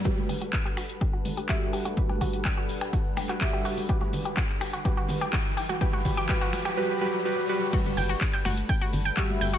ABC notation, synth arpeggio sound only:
X:1
M:4/4
L:1/16
Q:1/4=125
K:G
V:1 name="Synth arpeggio sound"
F z G F z G F z G F z G F z G F | z G F z G F z G F z G F z G F z | G F z G F z G F G F z G F z G F | G F z G G F z G z8 |
F z g F z g F z g F z g F z g F |]